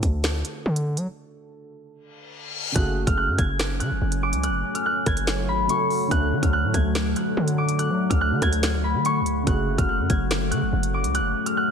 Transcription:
0.00 0.43 D2 loud
0.00 2.70 D3 medium
0.00 2.71 A3 medium
0.00 2.72 F#4 medium
0.00 2.74 A4 medium
0.00 kick loud
0.00 closed hi-hat medium
0.24 finger snap medium
0.24 snare loud
0.24 closed hi-hat medium
0.45 closed hi-hat medium
0.66 0.99 D3 loud
0.76 closed hi-hat medium
0.97 1.07 F#3 loud
0.97 closed hi-hat medium
1.92 reverse cymbal medium
2.72 3.06 F#1 loud
2.72 5.63 C#3 medium
2.72 9.43 F#3 medium
2.72 5.65 A3 medium
2.72 11.71 A3 medium
2.72 6.08 C#4 medium
2.72 6.08 G#5 medium
2.72 3.13 F#6 loud
2.72 kick loud
2.72 closed hi-hat medium
2.77 5.66 F#4 medium
2.77 5.67 G#4 medium
3.07 3.30 F#1 loud
3.07 3.23 F6 medium
3.07 kick medium
3.07 closed hi-hat medium
3.17 3.79 F#6 medium
3.28 3.38 F#2 loud
3.38 3.82 F#1 loud
3.38 4.43 G#6 medium
3.38 kick loud
3.38 closed hi-hat medium
3.59 finger snap loud
3.59 snare loud
3.59 closed hi-hat medium
3.80 3.92 C#3 loud
3.80 4.43 F#6 medium
3.80 closed hi-hat medium
3.91 4.01 F#1 loud
4.01 4.34 F#1 loud
4.12 closed hi-hat medium
4.23 5.45 D6 medium
4.33 4.50 C#2 loud
4.33 closed hi-hat medium
4.43 4.81 F#6 loud
4.43 closed hi-hat medium
4.49 4.64 F#1 loud
4.75 4.92 F6 medium
4.75 closed hi-hat medium
4.86 5.92 F#6 medium
5.06 5.50 F#1 loud
5.06 6.12 G#6 medium
5.06 kick loud
5.06 cross-stick loud
5.06 closed hi-hat medium
5.17 closed hi-hat medium
5.27 finger snap medium
5.27 snare loud
5.27 closed hi-hat medium
5.48 5.68 G#1 loud
5.48 6.84 B5 medium
5.67 6.10 C#3 medium
5.67 6.08 A3 soft
5.67 6.11 F#4 soft
5.67 6.12 A4 medium
5.67 6.96 C#6 medium
5.67 closed hi-hat medium
5.90 open hi-hat medium
6.07 6.34 D2 loud
6.07 9.41 D3 medium
6.07 9.44 D3 medium
6.07 9.42 A3 medium
6.07 11.71 F#4 medium
6.07 6.49 F#6 loud
6.07 kick loud
6.07 closed hi-hat medium
6.13 9.44 F#4 medium
6.13 9.45 A4 medium
6.32 6.42 D3 loud
6.43 6.65 D2 loud
6.43 6.59 F6 medium
6.43 kick loud
6.43 closed hi-hat medium
6.53 7.16 F#6 medium
6.64 6.74 A2 loud
6.74 7.14 D2 loud
6.74 7.79 G#6 medium
6.74 kick loud
6.74 closed hi-hat medium
6.95 finger snap medium
6.95 snare loud
6.95 closed hi-hat medium
7.16 7.78 F#6 medium
7.16 closed hi-hat medium
7.37 7.91 D3 loud
7.48 closed hi-hat medium
7.58 8.80 D6 medium
7.69 closed hi-hat medium
7.79 8.16 F#6 loud
7.79 closed hi-hat medium
7.90 8.10 F#3 loud
8.10 8.33 D2 loud
8.10 8.27 F6 medium
8.10 kick loud
8.10 closed hi-hat medium
8.21 9.27 F#6 medium
8.32 8.42 D3 loud
8.42 8.96 D2 loud
8.42 9.48 G#6 medium
8.42 kick loud
8.42 cross-stick loud
8.42 closed hi-hat medium
8.53 closed hi-hat medium
8.63 finger snap medium
8.63 snare loud
8.63 closed hi-hat medium
8.84 10.19 B5 medium
8.95 9.22 D3 loud
9.05 10.32 C#6 medium
9.05 closed hi-hat medium
9.21 9.46 D2 loud
9.26 closed hi-hat medium
9.43 9.77 F#1 loud
9.43 11.71 C#3 medium
9.43 11.71 F#3 medium
9.43 11.71 A3 medium
9.43 9.84 F#6 loud
9.43 kick loud
9.43 closed hi-hat medium
9.48 11.71 F#4 medium
9.48 11.71 G#4 medium
9.78 10.01 F#1 loud
9.78 9.95 F6 medium
9.78 kick loud
9.78 closed hi-hat medium
9.89 10.51 F#6 medium
9.99 10.09 F#2 loud
10.10 10.53 F#1 loud
10.10 11.15 G#6 medium
10.10 kick loud
10.10 closed hi-hat medium
10.31 finger snap loud
10.31 snare loud
10.31 closed hi-hat medium
10.51 10.64 C#3 loud
10.51 11.14 F#6 medium
10.51 closed hi-hat medium
10.62 10.72 F#1 loud
10.73 11.06 F#1 loud
10.83 closed hi-hat medium
10.94 11.71 D6 medium
11.04 11.21 C#2 loud
11.04 closed hi-hat medium
11.15 11.52 F#6 loud
11.15 closed hi-hat medium
11.20 11.35 F#1 loud
11.46 11.63 F6 medium
11.46 closed hi-hat medium
11.57 11.71 F#6 medium

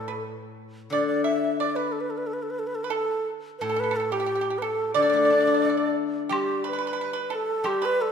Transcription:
0.00 0.91 A2 medium
0.00 0.24 A4 medium
0.08 0.23 B4 soft
0.90 2.95 D3 soft
0.90 1.06 D5 medium
0.90 1.24 D5 medium
1.07 1.24 D5 medium
1.24 1.57 E5 medium
1.59 1.77 D5 medium
1.59 1.76 D5 medium
1.76 1.94 B4 medium
1.76 1.92 B4 soft
1.92 2.02 A4 medium
2.00 2.12 B4 medium
2.10 2.19 A4 medium
2.18 2.28 B4 medium
2.27 2.35 A4 medium
2.33 2.44 B4 medium
2.42 2.52 A4 soft
2.50 2.61 B4 medium
2.59 2.69 A4 medium
2.67 2.76 B4 medium
2.75 2.85 A4 medium
2.84 2.92 B4 medium
2.84 2.91 B4 medium
2.90 3.26 A4 medium
2.90 3.29 A4 medium
3.59 4.96 A2 soft
3.59 3.68 A4 medium
3.59 3.81 A4 medium
3.59 3.63 B4 medium
3.69 3.75 A4 soft
3.76 3.82 A4 medium
3.76 3.98 B4 medium
3.84 3.90 A4 soft
3.91 3.99 A4 soft
3.96 4.14 A4 medium
3.96 4.07 A4 soft
4.12 4.19 G4 medium
4.12 4.60 G4 medium
4.20 4.25 G4 soft
4.26 4.34 G4 medium
4.35 4.40 G4 soft
4.41 4.49 G4 medium
4.50 4.57 G4 soft
4.58 4.94 A4 medium
4.58 4.64 B4 medium
4.62 4.95 A4 medium
4.94 6.98 D3 medium
4.94 5.01 D5 medium
4.94 5.93 D5 medium
5.02 5.08 D5 soft
5.10 6.48 A3 soft
5.10 5.15 D5 medium
5.17 5.24 D5 soft
5.25 5.31 D5 soft
5.30 6.65 D4 soft
5.30 5.39 D5 soft
5.40 5.46 D5 soft
5.47 6.82 E4 soft
5.47 5.53 D5 soft
5.54 5.61 D5 soft
5.62 6.99 A4 soft
5.62 5.68 D5 soft
5.69 5.76 D5 soft
5.77 5.85 D5 soft
6.29 7.63 G3 medium
6.29 6.62 G4 medium
6.29 6.63 G4 medium
6.29 high woodblock medium
6.64 6.72 B4 medium
6.64 7.36 B4 medium
6.73 6.77 B4 soft
6.79 6.86 B4 soft
6.87 6.92 B4 soft
6.93 7.00 B4 medium
7.01 7.09 B4 soft
7.13 7.30 B4 medium
7.30 7.62 A4 medium
7.35 7.69 A4 medium
7.64 8.12 G3 medium
7.64 7.80 G4 medium
7.64 7.87 G4 medium
7.64 high woodblock medium
7.82 8.12 B4 medium
7.82 8.03 B4 medium
8.01 8.12 A4 medium

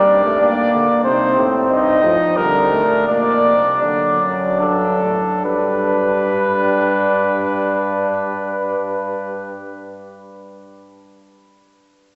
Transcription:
0.00 0.24 G3 loud
0.00 0.87 D4 medium
0.00 0.40 D5 medium
0.10 0.40 G2 medium
0.25 0.40 A3 medium
0.41 0.56 G2 medium
0.41 1.03 A#3 medium
0.41 1.03 D5 medium
0.73 0.87 D3 medium
1.04 1.36 C3 medium
1.04 2.05 C4 medium
1.04 1.45 D#4 medium
1.04 1.45 C5 medium
1.36 1.68 A2 medium
1.69 2.02 G2 medium
1.69 2.33 D#4 medium
1.69 2.38 D#5 medium
2.03 2.18 A2 medium
2.03 2.36 F3 medium
2.37 2.81 D3 medium
2.37 2.71 G3 medium
2.37 4.57 D4 medium
2.37 3.07 A#4 medium
2.72 3.06 A3 medium
3.07 3.46 A#2 medium
3.07 3.54 A#3 medium
3.07 3.80 D5 medium
3.45 3.81 C3 medium
3.82 4.20 D3 medium
3.82 5.41 F#3 medium
3.82 4.59 D5 medium
4.21 4.63 F#2 medium
4.61 5.02 G2 medium
4.61 5.44 D4 medium
4.61 5.44 A4 medium
5.03 5.19 A2 medium
5.45 9.70 G2 medium
5.45 9.70 G3 medium
5.45 9.70 D4 medium
5.45 9.70 B4 medium

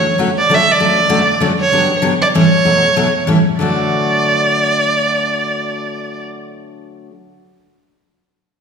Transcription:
0.00 0.15 C#5 medium
0.18 0.28 D3 medium
0.18 0.29 F#3 medium
0.18 0.29 A3 medium
0.18 0.29 C#4 medium
0.18 0.29 F#4 medium
0.38 0.56 D5 loud
0.49 0.59 D3 medium
0.49 0.60 F#3 medium
0.49 0.60 A3 medium
0.49 0.60 C#4 medium
0.49 0.60 F#4 medium
0.55 0.73 E5 loud
0.72 1.44 D5 medium
0.80 0.99 D3 medium
0.80 0.99 F#3 medium
0.80 0.99 A3 medium
0.80 0.99 C#4 medium
0.80 0.99 F#4 medium
1.09 1.20 D3 medium
1.09 1.20 F#3 medium
1.09 1.20 A3 medium
1.09 1.20 C#4 loud
1.09 1.20 F#4 medium
1.40 1.51 D3 medium
1.40 1.52 F#3 medium
1.40 1.52 A3 medium
1.40 1.52 C#4 medium
1.40 1.52 F#4 medium
1.60 2.00 C#5 medium
1.72 1.91 G2 medium
1.72 1.91 D3 medium
1.72 1.91 F#3 medium
1.72 1.92 B3 medium
1.72 1.92 D4 medium
1.72 1.92 G4 medium
2.02 2.13 G2 medium
2.02 2.13 D3 medium
2.02 2.13 F#3 medium
2.02 2.13 B3 medium
2.02 2.13 D4 loud
2.02 2.13 G4 medium
2.22 2.27 D5 medium
2.34 2.45 A2 medium
2.34 2.45 E3 medium
2.34 2.45 G3 medium
2.34 2.45 C#4 medium
2.34 2.45 E4 medium
2.34 2.45 A4 loud
2.34 3.24 C#5 medium
2.65 2.84 B2 medium
2.65 2.84 F#3 medium
2.65 2.84 A3 medium
2.65 2.84 D#4 medium
2.65 2.85 F#4 medium
2.96 3.06 B2 medium
2.96 3.07 F#3 medium
2.96 3.07 A3 medium
2.96 3.07 D#4 medium
2.96 3.07 F#4 medium
3.27 3.37 A2 medium
3.27 3.37 E3 medium
3.27 3.37 G3 medium
3.27 3.38 C#4 medium
3.27 3.38 E4 medium
3.27 3.38 A4 medium
3.59 7.09 D3 medium
3.59 7.10 F#3 medium
3.59 7.11 A3 medium
3.59 7.12 F#4 medium
3.59 6.21 D5 medium

